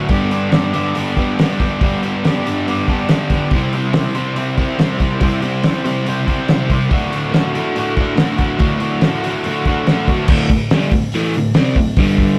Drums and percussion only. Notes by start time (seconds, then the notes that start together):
0.09 kick, open hi-hat
0.31 open hi-hat
0.52 snare, open hi-hat
0.74 open hi-hat
0.95 open hi-hat
1.17 kick, open hi-hat
1.39 snare, open hi-hat
1.60 kick, open hi-hat
1.81 kick, open hi-hat
2.03 open hi-hat
2.25 snare, open hi-hat
2.47 open hi-hat
2.68 open hi-hat
2.88 kick, open hi-hat
3.09 snare, open hi-hat
3.30 kick, open hi-hat
3.51 kick, open hi-hat
3.73 open hi-hat
3.93 snare, open hi-hat
4.15 open hi-hat
4.36 open hi-hat
4.58 kick, open hi-hat
4.79 snare, open hi-hat
5.00 kick, open hi-hat
5.21 kick, open hi-hat
5.42 open hi-hat
5.64 snare, open hi-hat
5.86 open hi-hat
6.07 open hi-hat
6.28 kick, open hi-hat
6.48 snare, open hi-hat
6.70 kick, open hi-hat
6.91 kick, open hi-hat
7.13 open hi-hat
7.34 snare, open hi-hat
7.55 open hi-hat
7.76 open hi-hat
7.97 kick, open hi-hat
8.17 snare, open hi-hat
8.38 kick, open hi-hat
8.59 kick, open hi-hat
8.80 open hi-hat
9.01 snare, open hi-hat
9.24 open hi-hat
9.44 open hi-hat
9.65 kick, open hi-hat
9.87 snare, open hi-hat
10.08 kick, open hi-hat
10.28 kick, crash
10.50 kick, open hi-hat
10.71 snare, open hi-hat
10.91 kick, open hi-hat
11.12 open hi-hat
11.34 open hi-hat
11.54 snare, open hi-hat
11.76 kick, open hi-hat
11.96 kick, open hi-hat
12.18 kick, open hi-hat